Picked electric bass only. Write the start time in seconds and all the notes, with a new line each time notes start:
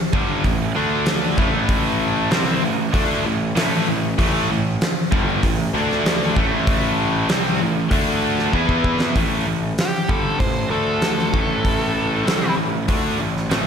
0.13 G1
0.44 A1
0.76 D2
1.38 A1
2.31 C2
2.63 A1
2.94 D2
3.25 A1
3.56 A1
3.89 A1
4.18 A1
4.50 A1
5.13 G1
5.43 A1
5.74 D2
6.37 A1
7.30 C2
7.62 A1
7.91 D2
8.54 E2
9.16 A1
9.46 A1
10.09 G1
10.40 A1
10.70 D2
11.33 A1
12.26 C2
12.57 A1
12.89 D2
13.20 A1
13.50 A1